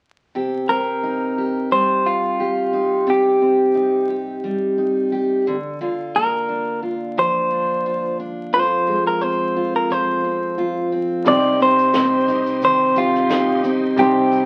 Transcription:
0.35 steel-string acoustic guitar C3 G4
0.69 steel-string acoustic guitar C4, clean electric guitar A#4
1.03 steel-string acoustic guitar D#4
1.38 steel-string acoustic guitar G4
1.71 steel-string acoustic guitar G3, clean electric guitar C5
2.05 steel-string acoustic guitar D#4, clean electric guitar F4
2.40 steel-string acoustic guitar G4
2.73 steel-string acoustic guitar D#4
3.07 steel-string acoustic guitar C3 G4, clean electric guitar G4
3.42 steel-string acoustic guitar C4
3.75 steel-string acoustic guitar D#4
4.09 steel-string acoustic guitar G4
4.44 steel-string acoustic guitar G3
4.78 steel-string acoustic guitar D#4
5.12 steel-string acoustic guitar G4
5.47 steel-string acoustic guitar D3
5.81 steel-string acoustic guitar D3 F4
6.16 steel-string acoustic guitar A#3, clean electric guitar A#4
6.49 steel-string acoustic guitar D4
6.83 steel-string acoustic guitar F4
7.17 steel-string acoustic guitar F3, clean electric guitar C5
7.51 steel-string acoustic guitar D4
7.86 steel-string acoustic guitar F4
8.20 steel-string acoustic guitar D4
8.53 steel-string acoustic guitar F2 F4, clean electric guitar C5
8.88 steel-string acoustic guitar G#3
9.07 clean electric guitar A#4
9.21 steel-string acoustic guitar C4, clean electric guitar C5
9.56 steel-string acoustic guitar F4
9.76 clean electric guitar A#4
9.90 steel-string acoustic guitar F3, clean electric guitar C5
10.24 steel-string acoustic guitar C4
10.58 steel-string acoustic guitar F4
10.92 steel-string acoustic guitar C4
11.25 steel-string acoustic guitar C3, upright piano G3 C4 D#4, tonewheel organ G3 D#4 C5, clean electric guitar D5, kick, shaker
11.29 upright piano C5
11.60 steel-string acoustic guitar D#4, clean electric guitar C5, shaker
11.79 shaker
11.94 steel-string acoustic guitar C4, snare, shaker
12.28 steel-string acoustic guitar D#4, kick, shaker
12.46 shaker
12.62 steel-string acoustic guitar D#3, clean electric guitar C5, kick, shaker
12.96 clean electric guitar F4, steel-string acoustic guitar G4, kick, shaker
13.15 snare
13.29 steel-string acoustic guitar D#4, snare, shaker
13.64 steel-string acoustic guitar C4, shaker
13.96 steel-string acoustic guitar C3, upright piano G3 C4 D#4 C5, clean electric guitar G4, kick, shaker
14.32 steel-string acoustic guitar D#4, shaker

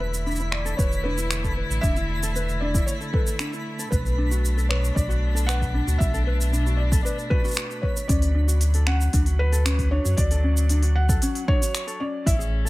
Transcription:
Already playing: sub bass E1, string quartet D3 A3 E4, felt piano E5, synth texture B5
0.00 ukulele B4
0.14 shaker
0.26 ukulele D4, shaker
0.31 shaker
0.35 shaker
0.40 ukulele E4, shaker
0.51 felt piano D5, finger snap
0.65 ukulele A4, shaker
0.77 sub bass E1, ukulele B4, felt piano C#5, kick, shaker
0.92 shaker
1.04 ukulele D4, felt piano B4
1.18 ukulele E4, shaker
1.31 finger snap, shaker
1.44 ukulele A4, kick, shaker
1.57 ukulele B4
1.70 sub bass A1, shaker
1.81 sub bass E1, ukulele D4, felt piano E5, kick, shaker
1.96 ukulele E4, shaker
2.23 ukulele A4, shaker
2.36 ukulele B4, shaker
2.49 shaker
2.61 ukulele D4, felt piano D5
2.74 ukulele E4, kick, shaker
2.86 felt piano C#5, shaker
3.01 ukulele A4, shaker
3.13 felt piano A4, ukulele B4, kick
3.27 shaker
3.39 ukulele D4, finger snap, shaker
3.53 ukulele E4, shaker
3.79 ukulele A4, shaker
3.91 sub bass B1, string quartet B2 D4, felt piano B4, ukulele B4, kick, shaker
4.06 shaker
4.18 ukulele D4
4.31 ukulele F#4, shaker
4.45 shaker
4.57 ukulele A4, shaker
4.69 ukulele B4, felt piano C#5, finger snap
4.84 shaker
4.95 sub bass B1, ukulele D4, felt piano D5, kick, shaker
5.09 ukulele F#4, shaker
5.35 ukulele A4, shaker
5.47 ukulele B4, felt piano F#5, finger snap, shaker
5.61 kick, shaker
5.74 ukulele D4
5.87 sub bass D2, ukulele F#4, shaker
5.98 sub bass B1, felt piano E5, kick, shaker
6.14 ukulele A4, shaker
6.27 ukulele B4
6.41 shaker
6.53 ukulele D4, shaker
6.66 ukulele F#4, shaker
6.77 felt piano D5
6.92 ukulele A4, kick, shaker
7.03 ukulele B4, felt piano D5, shaker
7.19 shaker
7.30 ukulele F#4, felt piano B4, kick
7.44 ukulele F#4, shaker
7.48 shaker
7.51 shaker
7.54 ukulele F#4, finger snap, shaker
7.58 shaker
7.70 ukulele F#4, shaker
7.82 ukulele B4, felt piano C#5, kick
7.97 shaker
8.08 sub bass D2, string quartet F#3, ukulele C#4, felt piano D5, kick, open hi-hat, shaker
8.22 open hi-hat, shaker
8.35 ukulele D4
8.48 ukulele F#4, shaker
8.61 open hi-hat, shaker
8.74 ukulele A4, open hi-hat, shaker
8.87 ukulele C#4, felt piano F#5, finger snap
9.01 shaker
9.13 sub bass D2, ukulele D4, kick, open hi-hat, shaker
9.26 ukulele F#4, open hi-hat, shaker
9.39 felt piano B4
9.52 ukulele A4, open hi-hat, shaker
9.65 ukulele C#4, finger snap, open hi-hat, shaker
9.79 kick, open hi-hat, shaker
9.91 ukulele D4, felt piano C#5
10.05 sub bass F#2, ukulele F#4, shaker
10.17 sub bass D2, felt piano D5, kick, open hi-hat, shaker
10.31 ukulele A4, open hi-hat, shaker
10.44 ukulele C#4
10.57 shaker
10.69 ukulele D4, open hi-hat, shaker
10.83 ukulele F#4, open hi-hat, shaker
10.96 felt piano F#5
11.09 ukulele A4, kick, shaker
11.22 ukulele C#4, open hi-hat, shaker
11.35 open hi-hat, shaker
11.48 ukulele D4, felt piano C#5, kick
11.61 ukulele F#4, open hi-hat, shaker
11.75 finger snap, open hi-hat, shaker
11.87 ukulele A4, open hi-hat, shaker
12.00 ukulele C#4, felt piano D5
12.26 sub bass A1, string quartet A2 C#4, ukulele E4, felt piano E5, kick, open hi-hat, shaker
12.39 ukulele G#4, shaker
12.65 ukulele A4

